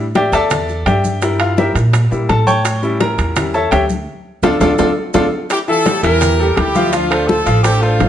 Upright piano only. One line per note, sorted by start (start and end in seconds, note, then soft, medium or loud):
0.16 0.33 G4 medium
0.16 0.32 D5 medium
0.16 0.32 E5 medium
0.16 0.33 G5 medium
0.33 0.83 A4 medium
0.33 0.83 D5 medium
0.33 0.83 E5 medium
0.33 0.83 A5 loud
0.86 1.36 G4 medium
0.86 1.36 D5 medium
0.86 1.36 E5 medium
0.86 1.36 G5 medium
1.22 2.09 G3 medium
1.22 1.57 E4 medium
1.22 1.57 A#4 soft
1.40 1.58 F4 medium
1.40 1.57 F5 medium
1.58 1.75 E4 medium
1.58 1.76 G4 medium
1.58 1.76 A#4 medium
1.58 1.75 E5 medium
2.11 2.27 G3 soft
2.11 2.28 A#3 soft
2.11 2.28 E4 medium
2.29 2.47 A4 medium
2.29 2.45 A5 medium
2.47 2.97 C#5 medium
2.47 2.97 G5 medium
2.47 2.97 A5 medium
2.47 2.97 C#6 loud
2.82 3.35 G3 medium
2.82 3.35 C#4 medium
2.82 3.36 E4 medium
3.01 3.51 A#4 medium
3.01 3.51 A#5 loud
3.36 3.52 G3 soft
3.36 3.53 C#4 soft
3.36 3.53 E4 soft
3.54 3.72 A4 medium
3.54 3.70 C#5 medium
3.54 3.70 E5 medium
3.54 3.72 A5 medium
3.71 3.83 G4 medium
3.71 3.83 C#5 medium
3.71 3.83 E5 medium
3.71 3.82 G5 medium
4.43 4.55 D4 loud
4.43 4.55 F4 loud
4.43 4.55 A4 loud
4.61 4.73 D4 loud
4.61 4.72 F4 loud
4.61 4.73 A4 loud
4.79 4.90 D4 medium
4.79 4.90 F4 medium
4.79 4.90 A4 loud
5.14 5.26 D4 medium
5.14 5.26 F4 loud
5.14 5.26 A4 loud
5.68 5.83 E3 medium
5.68 5.83 E4 medium
5.68 5.83 E5 medium
5.86 6.01 G3 medium
5.86 6.01 G4 medium
5.86 6.01 A4 medium
6.03 6.33 E3 medium
6.03 6.33 E4 medium
6.03 6.33 E5 medium
6.39 6.69 G3 medium
6.39 6.69 G4 medium
6.39 6.69 A4 medium
6.75 6.90 F3 medium
6.75 6.90 F4 medium
6.75 6.90 F5 medium
6.93 7.08 F3 medium
6.93 7.08 F4 medium
6.93 7.08 F5 medium
7.10 7.40 A3 medium
7.10 7.40 A4 medium
7.10 7.40 C5 medium
7.46 7.61 F3 medium
7.46 7.61 F4 medium
7.46 7.61 F5 medium
7.65 7.79 A3 medium
7.65 7.79 A4 medium
7.65 7.79 C5 medium
7.83 8.09 A3 medium
7.83 8.09 A4 medium
7.83 8.09 C5 medium